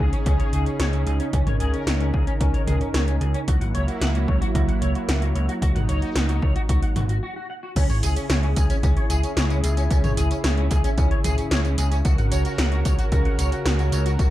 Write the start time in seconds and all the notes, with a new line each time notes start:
Already playing: C#3 C#4 D#4 G#4
0.00 C#2
0.13 C#4, closed hi-hat
0.26 C#2 C#4, kick, closed hi-hat
0.39 C#5, closed hi-hat
0.53 C#2 G#4, closed hi-hat
0.66 C#4, closed hi-hat
0.80 C#2 C#5, snare, closed hi-hat
0.93 C#4, closed hi-hat
1.06 C#2 G#4, closed hi-hat
1.20 C#4, closed hi-hat
1.33 C#2 C#4 A#4, kick, closed hi-hat
1.47 G#1 C#5, closed hi-hat, mid tom
1.60 C#2 G#4, closed hi-hat
1.73 C#4, closed hi-hat
1.87 C#2 C#5, snare, closed hi-hat
2.00 C#4, closed hi-hat
2.14 C#2 G#4, kick
2.27 C#4, closed hi-hat
2.40 C#2 C#4, kick, closed hi-hat
2.54 C#5, closed hi-hat
2.67 C#2 G#4, closed hi-hat, mid tom
2.81 C#4, closed hi-hat
2.94 C#2 C#5, snare, closed hi-hat
3.08 C#4, closed hi-hat
3.21 C#2 G#4, closed hi-hat
3.34 C#4, closed hi-hat
3.48 C#2 F#3 A#3 E4 F#4, kick, closed hi-hat
3.61 G#1 F#5, closed hi-hat
3.75 C#2 C#5, closed hi-hat
3.88 F#4, closed hi-hat
4.01 C#2 F#5, snare, closed hi-hat
4.15 F#4, closed hi-hat
4.28 C#2 C#5, kick
4.41 F#4, closed hi-hat
4.55 C#2 F#4, kick, closed hi-hat
4.68 F#5, closed hi-hat
4.82 C#2 C#5, closed hi-hat
4.95 F#4, closed hi-hat
5.08 C#2 F#5, snare, closed hi-hat
5.22 F#4, closed hi-hat
5.35 C#2 C#5, closed hi-hat
5.49 F#4, closed hi-hat
5.62 C#2 D#4 F#4, kick, closed hi-hat
5.75 G#1 F#5, closed hi-hat, mid tom
5.89 C#2 C#5, closed hi-hat
6.02 F#4, closed hi-hat
6.16 C#2 F#5, snare, closed hi-hat
6.29 F#4, closed hi-hat
6.42 C#2 C#5, kick
6.56 F#4, closed hi-hat
6.69 C#2 F#4, kick, closed hi-hat
6.83 F#5, closed hi-hat
6.96 G#1 F#4, closed hi-hat, mid tom
7.09 F#4, closed hi-hat
7.23 F#4
7.36 F#4
7.50 F#5
7.63 F#4
7.76 C#2 C#3 C#4 E4 G#4, kick, closed hi-hat, crash, tambourine
7.90 G#1 C#5, closed hi-hat, tambourine
8.03 C#2 G#4, closed hi-hat, tambourine
8.16 C#4, closed hi-hat, tambourine
8.30 C#2 C#5, snare, closed hi-hat, tambourine
8.43 C#4, closed hi-hat
8.56 C#2 G#4, kick, closed hi-hat, tambourine
8.70 C#4, closed hi-hat, tambourine
8.83 C#2 C#4, kick, closed hi-hat, tambourine
8.97 C#5, closed hi-hat
9.10 C#2 G#4, closed hi-hat, tambourine
9.23 C#4, closed hi-hat, tambourine
9.37 C#2 C#5, snare, closed hi-hat, tambourine
9.50 C#4, closed hi-hat, tambourine
9.64 C#2 G#4, closed hi-hat, tambourine
9.77 C#4, closed hi-hat, tambourine
9.90 C#2 C#4, kick, closed hi-hat, tambourine
10.04 G#1 C#5, closed hi-hat, mid tom, tambourine
10.17 C#2 G#4, closed hi-hat, tambourine
10.31 C#4, closed hi-hat, tambourine
10.44 C#2 C#5, snare, closed hi-hat, tambourine
10.57 C#4, closed hi-hat
10.71 C#2 G#4, kick, closed hi-hat, tambourine
10.84 C#4, closed hi-hat, tambourine
10.98 C#2 C#4, kick, closed hi-hat, tambourine
11.11 C#5, closed hi-hat
11.24 C#2 G#4, closed hi-hat, mid tom, tambourine
11.38 C#4, closed hi-hat, tambourine
11.51 C#2 C#5, snare, closed hi-hat, tambourine
11.65 C#4, closed hi-hat, tambourine
11.78 C#2 G#4, closed hi-hat, tambourine
11.91 C#4, closed hi-hat, tambourine
12.05 C#2 F#4 A#4, kick, closed hi-hat, tambourine
12.18 G#1 F#5, closed hi-hat, tambourine
12.32 C#2 C#5, closed hi-hat, tambourine
12.45 F#4, closed hi-hat, tambourine
12.58 C#2 F#5, snare, closed hi-hat, tambourine
12.72 F#4, closed hi-hat
12.85 C#2 C#5, kick, closed hi-hat, tambourine
12.99 F#4, closed hi-hat, tambourine
13.12 C#2 F#4, kick, closed hi-hat, tambourine
13.25 F#5, closed hi-hat
13.39 C#2 C#5, closed hi-hat, tambourine
13.52 F#4, closed hi-hat, tambourine
13.66 C#2 F#5, snare, closed hi-hat, tambourine
13.79 F#4, closed hi-hat, tambourine
13.92 C#2 C#5, closed hi-hat, tambourine
14.06 F#4, closed hi-hat, tambourine
14.19 C#2 F#4, kick, closed hi-hat, tambourine